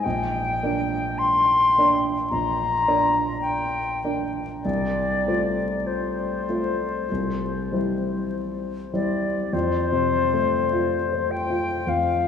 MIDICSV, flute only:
0, 0, Header, 1, 2, 480
1, 0, Start_track
1, 0, Key_signature, -1, "major"
1, 0, Tempo, 1156069
1, 20, Time_signature, 4, 2, 24, 8
1, 502, Tempo, 1115242
1, 1462, Tempo, 1219512
1, 3862, Tempo, 1165049
1, 4991, End_track
2, 0, Start_track
2, 0, Title_t, "Flute"
2, 0, Program_c, 0, 73
2, 14, Note_on_c, 0, 79, 71
2, 491, Note_on_c, 0, 84, 77
2, 497, Note_off_c, 0, 79, 0
2, 858, Note_off_c, 0, 84, 0
2, 972, Note_on_c, 0, 82, 67
2, 1449, Note_off_c, 0, 82, 0
2, 1452, Note_on_c, 0, 79, 63
2, 1803, Note_off_c, 0, 79, 0
2, 1925, Note_on_c, 0, 74, 56
2, 2418, Note_on_c, 0, 72, 42
2, 2424, Note_off_c, 0, 74, 0
2, 3384, Note_off_c, 0, 72, 0
2, 3626, Note_on_c, 0, 74, 49
2, 3860, Note_on_c, 0, 72, 68
2, 3866, Note_off_c, 0, 74, 0
2, 4593, Note_on_c, 0, 79, 60
2, 4599, Note_off_c, 0, 72, 0
2, 4829, Note_on_c, 0, 77, 60
2, 4835, Note_off_c, 0, 79, 0
2, 4991, Note_off_c, 0, 77, 0
2, 4991, End_track
0, 0, End_of_file